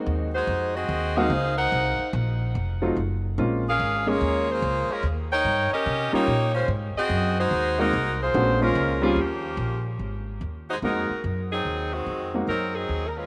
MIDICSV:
0, 0, Header, 1, 5, 480
1, 0, Start_track
1, 0, Tempo, 414079
1, 68, Time_signature, 4, 2, 24, 8
1, 15373, End_track
2, 0, Start_track
2, 0, Title_t, "Saxophone section"
2, 0, Program_c, 0, 65
2, 398, Note_on_c, 0, 56, 85
2, 399, Note_on_c, 0, 63, 76
2, 399, Note_on_c, 0, 66, 81
2, 403, Note_on_c, 0, 72, 93
2, 837, Note_off_c, 0, 56, 0
2, 838, Note_off_c, 0, 63, 0
2, 838, Note_off_c, 0, 66, 0
2, 840, Note_off_c, 0, 72, 0
2, 871, Note_on_c, 0, 60, 93
2, 874, Note_on_c, 0, 68, 88
2, 875, Note_on_c, 0, 75, 103
2, 880, Note_on_c, 0, 66, 93
2, 1342, Note_off_c, 0, 68, 0
2, 1347, Note_off_c, 0, 60, 0
2, 1349, Note_off_c, 0, 75, 0
2, 1352, Note_off_c, 0, 66, 0
2, 1356, Note_on_c, 0, 68, 93
2, 1359, Note_on_c, 0, 72, 105
2, 1363, Note_on_c, 0, 77, 111
2, 1365, Note_on_c, 0, 63, 87
2, 1812, Note_off_c, 0, 63, 0
2, 1814, Note_off_c, 0, 72, 0
2, 1823, Note_on_c, 0, 78, 113
2, 1825, Note_on_c, 0, 70, 95
2, 1826, Note_on_c, 0, 63, 100
2, 1827, Note_on_c, 0, 72, 86
2, 1830, Note_off_c, 0, 68, 0
2, 1834, Note_off_c, 0, 77, 0
2, 2427, Note_off_c, 0, 78, 0
2, 2428, Note_off_c, 0, 63, 0
2, 2428, Note_off_c, 0, 70, 0
2, 2429, Note_off_c, 0, 72, 0
2, 4271, Note_on_c, 0, 61, 91
2, 4273, Note_on_c, 0, 68, 84
2, 4276, Note_on_c, 0, 70, 91
2, 4278, Note_on_c, 0, 77, 111
2, 4697, Note_off_c, 0, 61, 0
2, 4698, Note_off_c, 0, 68, 0
2, 4699, Note_off_c, 0, 70, 0
2, 4700, Note_off_c, 0, 77, 0
2, 4735, Note_on_c, 0, 73, 102
2, 4736, Note_on_c, 0, 68, 84
2, 4737, Note_on_c, 0, 58, 94
2, 4737, Note_on_c, 0, 65, 83
2, 5201, Note_off_c, 0, 73, 0
2, 5202, Note_off_c, 0, 58, 0
2, 5202, Note_off_c, 0, 65, 0
2, 5202, Note_off_c, 0, 68, 0
2, 5228, Note_on_c, 0, 65, 93
2, 5228, Note_on_c, 0, 68, 90
2, 5229, Note_on_c, 0, 58, 84
2, 5232, Note_on_c, 0, 72, 104
2, 5684, Note_off_c, 0, 65, 0
2, 5687, Note_off_c, 0, 68, 0
2, 5688, Note_off_c, 0, 58, 0
2, 5689, Note_off_c, 0, 72, 0
2, 5693, Note_on_c, 0, 56, 89
2, 5698, Note_on_c, 0, 61, 80
2, 5698, Note_on_c, 0, 65, 83
2, 5702, Note_on_c, 0, 70, 93
2, 5848, Note_off_c, 0, 56, 0
2, 5850, Note_off_c, 0, 61, 0
2, 5850, Note_off_c, 0, 65, 0
2, 5852, Note_off_c, 0, 70, 0
2, 6166, Note_on_c, 0, 70, 100
2, 6168, Note_on_c, 0, 73, 103
2, 6168, Note_on_c, 0, 79, 120
2, 6176, Note_on_c, 0, 63, 98
2, 6603, Note_off_c, 0, 70, 0
2, 6604, Note_off_c, 0, 73, 0
2, 6604, Note_off_c, 0, 79, 0
2, 6609, Note_off_c, 0, 63, 0
2, 6646, Note_on_c, 0, 75, 109
2, 6651, Note_on_c, 0, 61, 88
2, 6651, Note_on_c, 0, 67, 90
2, 6651, Note_on_c, 0, 70, 96
2, 7110, Note_off_c, 0, 67, 0
2, 7116, Note_off_c, 0, 75, 0
2, 7118, Note_off_c, 0, 61, 0
2, 7118, Note_off_c, 0, 70, 0
2, 7122, Note_on_c, 0, 73, 107
2, 7124, Note_on_c, 0, 67, 93
2, 7125, Note_on_c, 0, 58, 91
2, 7129, Note_on_c, 0, 63, 99
2, 7561, Note_off_c, 0, 73, 0
2, 7562, Note_off_c, 0, 58, 0
2, 7562, Note_off_c, 0, 67, 0
2, 7564, Note_off_c, 0, 63, 0
2, 7590, Note_on_c, 0, 61, 93
2, 7590, Note_on_c, 0, 65, 76
2, 7593, Note_on_c, 0, 56, 80
2, 7597, Note_on_c, 0, 72, 94
2, 7744, Note_off_c, 0, 61, 0
2, 7744, Note_off_c, 0, 65, 0
2, 7746, Note_off_c, 0, 56, 0
2, 7748, Note_off_c, 0, 72, 0
2, 8084, Note_on_c, 0, 60, 102
2, 8090, Note_on_c, 0, 75, 108
2, 8092, Note_on_c, 0, 68, 95
2, 8096, Note_on_c, 0, 66, 93
2, 8521, Note_off_c, 0, 60, 0
2, 8524, Note_off_c, 0, 75, 0
2, 8525, Note_off_c, 0, 68, 0
2, 8527, Note_off_c, 0, 66, 0
2, 8575, Note_on_c, 0, 66, 92
2, 8578, Note_on_c, 0, 63, 97
2, 8578, Note_on_c, 0, 72, 103
2, 8579, Note_on_c, 0, 56, 93
2, 9029, Note_off_c, 0, 66, 0
2, 9032, Note_off_c, 0, 63, 0
2, 9033, Note_off_c, 0, 56, 0
2, 9041, Note_off_c, 0, 72, 0
2, 9043, Note_on_c, 0, 66, 88
2, 9046, Note_on_c, 0, 63, 94
2, 9047, Note_on_c, 0, 56, 93
2, 9050, Note_on_c, 0, 70, 105
2, 9480, Note_off_c, 0, 66, 0
2, 9482, Note_off_c, 0, 56, 0
2, 9482, Note_off_c, 0, 63, 0
2, 9483, Note_off_c, 0, 70, 0
2, 9536, Note_on_c, 0, 68, 85
2, 9538, Note_on_c, 0, 72, 110
2, 9539, Note_on_c, 0, 65, 97
2, 9542, Note_on_c, 0, 58, 81
2, 9989, Note_off_c, 0, 65, 0
2, 9998, Note_on_c, 0, 61, 83
2, 9999, Note_off_c, 0, 68, 0
2, 10000, Note_off_c, 0, 72, 0
2, 10002, Note_off_c, 0, 58, 0
2, 10002, Note_on_c, 0, 70, 98
2, 10003, Note_on_c, 0, 65, 76
2, 10005, Note_on_c, 0, 56, 83
2, 10436, Note_off_c, 0, 61, 0
2, 10438, Note_off_c, 0, 70, 0
2, 10439, Note_off_c, 0, 65, 0
2, 10440, Note_off_c, 0, 56, 0
2, 10471, Note_on_c, 0, 68, 87
2, 10475, Note_on_c, 0, 53, 71
2, 10475, Note_on_c, 0, 58, 70
2, 10478, Note_on_c, 0, 61, 77
2, 10634, Note_off_c, 0, 68, 0
2, 10636, Note_off_c, 0, 53, 0
2, 10636, Note_off_c, 0, 58, 0
2, 10638, Note_off_c, 0, 61, 0
2, 10659, Note_on_c, 0, 53, 72
2, 10661, Note_on_c, 0, 58, 73
2, 10661, Note_on_c, 0, 61, 70
2, 10661, Note_on_c, 0, 67, 85
2, 11435, Note_off_c, 0, 53, 0
2, 11436, Note_off_c, 0, 58, 0
2, 11436, Note_off_c, 0, 61, 0
2, 11437, Note_off_c, 0, 67, 0
2, 12396, Note_on_c, 0, 66, 78
2, 12402, Note_on_c, 0, 63, 83
2, 12403, Note_on_c, 0, 56, 76
2, 12404, Note_on_c, 0, 72, 83
2, 12468, Note_off_c, 0, 66, 0
2, 12473, Note_off_c, 0, 56, 0
2, 12473, Note_off_c, 0, 63, 0
2, 12474, Note_off_c, 0, 72, 0
2, 12570, Note_on_c, 0, 63, 77
2, 12571, Note_on_c, 0, 70, 92
2, 12572, Note_on_c, 0, 56, 80
2, 12572, Note_on_c, 0, 66, 80
2, 13006, Note_off_c, 0, 63, 0
2, 13007, Note_off_c, 0, 56, 0
2, 13007, Note_off_c, 0, 66, 0
2, 13007, Note_off_c, 0, 70, 0
2, 13354, Note_on_c, 0, 54, 72
2, 13354, Note_on_c, 0, 63, 82
2, 13355, Note_on_c, 0, 68, 89
2, 13358, Note_on_c, 0, 60, 82
2, 13794, Note_off_c, 0, 54, 0
2, 13794, Note_off_c, 0, 63, 0
2, 13794, Note_off_c, 0, 68, 0
2, 13796, Note_off_c, 0, 60, 0
2, 13824, Note_on_c, 0, 56, 76
2, 13830, Note_on_c, 0, 51, 76
2, 13830, Note_on_c, 0, 60, 82
2, 13831, Note_on_c, 0, 66, 82
2, 14302, Note_off_c, 0, 56, 0
2, 14305, Note_off_c, 0, 51, 0
2, 14305, Note_off_c, 0, 60, 0
2, 14305, Note_off_c, 0, 66, 0
2, 14470, Note_on_c, 0, 70, 90
2, 14473, Note_on_c, 0, 60, 87
2, 14473, Note_on_c, 0, 63, 73
2, 14476, Note_on_c, 0, 54, 77
2, 14759, Note_off_c, 0, 70, 0
2, 14761, Note_off_c, 0, 60, 0
2, 14761, Note_off_c, 0, 63, 0
2, 14762, Note_off_c, 0, 54, 0
2, 14787, Note_on_c, 0, 60, 78
2, 14787, Note_on_c, 0, 63, 82
2, 14789, Note_on_c, 0, 68, 84
2, 14791, Note_on_c, 0, 54, 80
2, 15158, Note_off_c, 0, 60, 0
2, 15158, Note_off_c, 0, 63, 0
2, 15158, Note_on_c, 0, 70, 59
2, 15159, Note_off_c, 0, 68, 0
2, 15160, Note_off_c, 0, 54, 0
2, 15262, Note_off_c, 0, 70, 0
2, 15268, Note_on_c, 0, 61, 71
2, 15273, Note_on_c, 0, 56, 70
2, 15273, Note_on_c, 0, 65, 82
2, 15273, Note_on_c, 0, 71, 92
2, 15373, Note_off_c, 0, 56, 0
2, 15373, Note_off_c, 0, 61, 0
2, 15373, Note_off_c, 0, 65, 0
2, 15373, Note_off_c, 0, 71, 0
2, 15373, End_track
3, 0, Start_track
3, 0, Title_t, "Grand piano"
3, 0, Program_c, 1, 0
3, 0, Note_on_c, 1, 56, 68
3, 0, Note_on_c, 1, 58, 65
3, 0, Note_on_c, 1, 60, 67
3, 0, Note_on_c, 1, 63, 66
3, 0, Note_on_c, 1, 66, 78
3, 318, Note_off_c, 1, 56, 0
3, 321, Note_off_c, 1, 58, 0
3, 321, Note_off_c, 1, 60, 0
3, 322, Note_off_c, 1, 63, 0
3, 324, Note_off_c, 1, 66, 0
3, 1353, Note_on_c, 1, 56, 85
3, 1358, Note_on_c, 1, 58, 78
3, 1364, Note_on_c, 1, 63, 73
3, 1364, Note_on_c, 1, 66, 105
3, 1366, Note_on_c, 1, 60, 83
3, 1499, Note_off_c, 1, 56, 0
3, 1502, Note_off_c, 1, 58, 0
3, 1505, Note_off_c, 1, 63, 0
3, 1505, Note_off_c, 1, 66, 0
3, 1506, Note_off_c, 1, 60, 0
3, 3266, Note_on_c, 1, 54, 72
3, 3270, Note_on_c, 1, 57, 60
3, 3271, Note_on_c, 1, 60, 68
3, 3273, Note_on_c, 1, 65, 74
3, 3276, Note_on_c, 1, 63, 65
3, 3417, Note_off_c, 1, 54, 0
3, 3419, Note_off_c, 1, 57, 0
3, 3420, Note_off_c, 1, 60, 0
3, 3421, Note_off_c, 1, 65, 0
3, 3422, Note_off_c, 1, 63, 0
3, 3917, Note_on_c, 1, 56, 63
3, 3918, Note_on_c, 1, 58, 62
3, 3922, Note_on_c, 1, 60, 56
3, 3925, Note_on_c, 1, 61, 58
3, 3931, Note_on_c, 1, 65, 78
3, 4196, Note_off_c, 1, 56, 0
3, 4197, Note_off_c, 1, 58, 0
3, 4199, Note_off_c, 1, 60, 0
3, 4201, Note_off_c, 1, 61, 0
3, 4203, Note_off_c, 1, 65, 0
3, 4711, Note_on_c, 1, 56, 75
3, 4716, Note_on_c, 1, 58, 68
3, 4721, Note_on_c, 1, 61, 66
3, 4722, Note_on_c, 1, 68, 82
3, 5324, Note_off_c, 1, 56, 0
3, 5326, Note_off_c, 1, 58, 0
3, 5328, Note_off_c, 1, 61, 0
3, 5329, Note_off_c, 1, 68, 0
3, 7101, Note_on_c, 1, 55, 81
3, 7103, Note_on_c, 1, 58, 68
3, 7107, Note_on_c, 1, 61, 70
3, 7108, Note_on_c, 1, 63, 75
3, 7113, Note_on_c, 1, 65, 82
3, 7254, Note_off_c, 1, 55, 0
3, 7256, Note_off_c, 1, 58, 0
3, 7258, Note_off_c, 1, 61, 0
3, 7258, Note_off_c, 1, 63, 0
3, 7261, Note_off_c, 1, 65, 0
3, 9024, Note_on_c, 1, 58, 77
3, 9025, Note_on_c, 1, 56, 79
3, 9032, Note_on_c, 1, 60, 78
3, 9032, Note_on_c, 1, 63, 78
3, 9032, Note_on_c, 1, 66, 90
3, 9175, Note_off_c, 1, 58, 0
3, 9176, Note_off_c, 1, 56, 0
3, 9179, Note_off_c, 1, 60, 0
3, 9179, Note_off_c, 1, 63, 0
3, 9179, Note_off_c, 1, 66, 0
3, 9669, Note_on_c, 1, 57, 67
3, 9671, Note_on_c, 1, 59, 65
3, 9673, Note_on_c, 1, 61, 59
3, 9677, Note_on_c, 1, 62, 59
3, 9679, Note_on_c, 1, 66, 77
3, 9950, Note_off_c, 1, 57, 0
3, 9951, Note_off_c, 1, 59, 0
3, 9952, Note_off_c, 1, 61, 0
3, 9954, Note_off_c, 1, 62, 0
3, 9955, Note_off_c, 1, 66, 0
3, 9979, Note_on_c, 1, 56, 71
3, 9988, Note_on_c, 1, 58, 62
3, 9991, Note_on_c, 1, 61, 62
3, 9991, Note_on_c, 1, 72, 66
3, 9994, Note_on_c, 1, 65, 77
3, 10398, Note_off_c, 1, 56, 0
3, 10402, Note_off_c, 1, 58, 0
3, 10403, Note_off_c, 1, 72, 0
3, 10404, Note_off_c, 1, 61, 0
3, 10405, Note_off_c, 1, 65, 0
3, 10455, Note_on_c, 1, 55, 95
3, 10457, Note_on_c, 1, 58, 77
3, 10460, Note_on_c, 1, 60, 75
3, 10464, Note_on_c, 1, 61, 79
3, 10470, Note_on_c, 1, 65, 100
3, 10609, Note_off_c, 1, 55, 0
3, 10610, Note_off_c, 1, 58, 0
3, 10612, Note_off_c, 1, 60, 0
3, 10614, Note_off_c, 1, 61, 0
3, 10617, Note_off_c, 1, 65, 0
3, 12554, Note_on_c, 1, 56, 68
3, 12558, Note_on_c, 1, 58, 53
3, 12565, Note_on_c, 1, 60, 58
3, 12567, Note_on_c, 1, 63, 66
3, 12570, Note_on_c, 1, 66, 77
3, 12832, Note_off_c, 1, 56, 0
3, 12834, Note_off_c, 1, 58, 0
3, 12837, Note_off_c, 1, 60, 0
3, 12838, Note_off_c, 1, 63, 0
3, 12840, Note_off_c, 1, 66, 0
3, 14307, Note_on_c, 1, 56, 59
3, 14311, Note_on_c, 1, 58, 61
3, 14312, Note_on_c, 1, 60, 54
3, 14315, Note_on_c, 1, 63, 54
3, 14323, Note_on_c, 1, 66, 68
3, 14455, Note_off_c, 1, 56, 0
3, 14457, Note_off_c, 1, 58, 0
3, 14457, Note_off_c, 1, 60, 0
3, 14459, Note_off_c, 1, 63, 0
3, 14463, Note_off_c, 1, 66, 0
3, 15373, End_track
4, 0, Start_track
4, 0, Title_t, "Upright bass"
4, 0, Program_c, 2, 32
4, 75, Note_on_c, 2, 39, 100
4, 538, Note_off_c, 2, 39, 0
4, 547, Note_on_c, 2, 41, 96
4, 1015, Note_off_c, 2, 41, 0
4, 1027, Note_on_c, 2, 39, 97
4, 1495, Note_off_c, 2, 39, 0
4, 1505, Note_on_c, 2, 37, 106
4, 1974, Note_off_c, 2, 37, 0
4, 1993, Note_on_c, 2, 36, 98
4, 2283, Note_off_c, 2, 36, 0
4, 2471, Note_on_c, 2, 34, 107
4, 2938, Note_off_c, 2, 34, 0
4, 2956, Note_on_c, 2, 29, 95
4, 3421, Note_off_c, 2, 29, 0
4, 3437, Note_on_c, 2, 30, 88
4, 3901, Note_off_c, 2, 30, 0
4, 3916, Note_on_c, 2, 34, 95
4, 4381, Note_off_c, 2, 34, 0
4, 4398, Note_on_c, 2, 32, 97
4, 4862, Note_off_c, 2, 32, 0
4, 4878, Note_on_c, 2, 39, 95
4, 5342, Note_off_c, 2, 39, 0
4, 5358, Note_on_c, 2, 37, 96
4, 5647, Note_off_c, 2, 37, 0
4, 5830, Note_on_c, 2, 39, 98
4, 6298, Note_off_c, 2, 39, 0
4, 6310, Note_on_c, 2, 43, 95
4, 6602, Note_off_c, 2, 43, 0
4, 6794, Note_on_c, 2, 48, 93
4, 7084, Note_off_c, 2, 48, 0
4, 7271, Note_on_c, 2, 46, 95
4, 7738, Note_off_c, 2, 46, 0
4, 7743, Note_on_c, 2, 44, 101
4, 8037, Note_off_c, 2, 44, 0
4, 8222, Note_on_c, 2, 42, 102
4, 8692, Note_off_c, 2, 42, 0
4, 8704, Note_on_c, 2, 39, 92
4, 9173, Note_off_c, 2, 39, 0
4, 9193, Note_on_c, 2, 36, 100
4, 9657, Note_off_c, 2, 36, 0
4, 9671, Note_on_c, 2, 34, 101
4, 10136, Note_off_c, 2, 34, 0
4, 10147, Note_on_c, 2, 37, 100
4, 10606, Note_off_c, 2, 37, 0
4, 10613, Note_on_c, 2, 39, 90
4, 11086, Note_off_c, 2, 39, 0
4, 11094, Note_on_c, 2, 34, 94
4, 11567, Note_off_c, 2, 34, 0
4, 11584, Note_on_c, 2, 32, 77
4, 12052, Note_off_c, 2, 32, 0
4, 12066, Note_on_c, 2, 39, 85
4, 12533, Note_off_c, 2, 39, 0
4, 12546, Note_on_c, 2, 41, 91
4, 12837, Note_off_c, 2, 41, 0
4, 13028, Note_on_c, 2, 42, 88
4, 13494, Note_off_c, 2, 42, 0
4, 13507, Note_on_c, 2, 39, 73
4, 13973, Note_off_c, 2, 39, 0
4, 13985, Note_on_c, 2, 41, 80
4, 14452, Note_off_c, 2, 41, 0
4, 14461, Note_on_c, 2, 42, 78
4, 14930, Note_off_c, 2, 42, 0
4, 14941, Note_on_c, 2, 39, 79
4, 15373, Note_off_c, 2, 39, 0
4, 15373, End_track
5, 0, Start_track
5, 0, Title_t, "Muted upright bass strokes"
5, 2302, Note_on_c, 9, 29, 51
5, 2418, Note_off_c, 9, 29, 0
5, 5673, Note_on_c, 9, 29, 47
5, 5788, Note_off_c, 9, 29, 0
5, 6623, Note_on_c, 9, 29, 43
5, 6739, Note_off_c, 9, 29, 0
5, 7105, Note_on_c, 9, 29, 50
5, 7221, Note_off_c, 9, 29, 0
5, 8056, Note_on_c, 9, 29, 53
5, 8172, Note_off_c, 9, 29, 0
5, 12860, Note_on_c, 9, 29, 44
5, 12976, Note_off_c, 9, 29, 0
5, 15373, End_track
0, 0, End_of_file